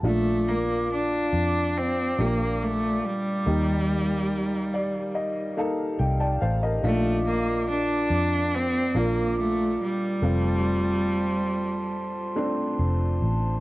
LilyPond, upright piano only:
<<
  \new Staff \with { instrumentName = "Upright piano" } { \time 4/4 \key bes \major \tempo 4 = 70 << { r1 | r4. d''8 ees''8 f''8 g''16 <d'' g'' a''>16 <c'' f''>16 <bes' ees''>16~ | <bes' ees''>16 r2. r8. | r1 | } \\ { <f d' f'>2 r8 <bes, d' g'>4. | <bes ees' g'>2 r8 <bes ees' a'>4. | <f d' f'>2 r8 <bes, d' f'>4. | <a c' f'>2 r8 <a c' d'>4. | } >> }
  \new Staff \with { instrumentName = "Upright piano" } { \clef bass \time 4/4 \key bes \major bes,4. r2 r8 | ees4. r2 r8 | bes,4. r2 r8 | r1 | }
>>